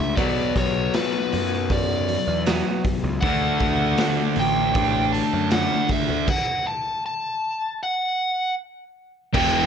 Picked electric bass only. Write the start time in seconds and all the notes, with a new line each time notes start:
0.00 C#2
0.18 B1
0.56 B1
1.34 F#2
2.28 E2
3.04 C#2
3.22 D2
3.61 D2
4.37 A1
5.33 F#2
6.09 D2
9.35 E1